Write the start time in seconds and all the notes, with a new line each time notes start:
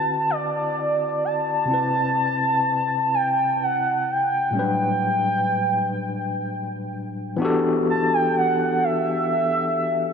Already playing: D3 C4 E4 F#4 B4 A5
0.30 D5
1.24 A5
1.66 C3 C4
1.71 E4 B4
3.14 G5
3.63 F#5
4.11 G5
4.51 A2 G3
4.55 F#3 C#4 B4 G5
4.61 D4
7.37 E3 B3 D4
7.42 F#4 G4 A4
7.90 A5
8.13 G5
8.37 F#5
8.84 E5